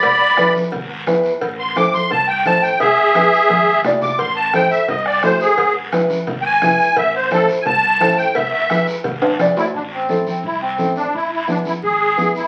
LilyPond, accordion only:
\new Staff \with { instrumentName = "Accordion" } { \time 4/4 \key a \minor \tempo 4 = 173 <d'' b''>4. r2 r8 | r8 c'''8 d'''8 c'''8 a''8 g''8 a''8 g''8 | <gis' e''>2. r8 d'''8 | c'''8 a''8 g''8 e''8 dis''8 d''8 c''8 gis'8~ |
gis'8 r2 <g'' gis''>4. | e''8 c''8 a'8 r8 <gis'' a''>4. g''8 | e''8 e''4 r2 e'8 | d'8 c'4 c'8 e'8 c'4 d'8 |
e'8 e'8 d'8 e'8 gis'4. e'8 | }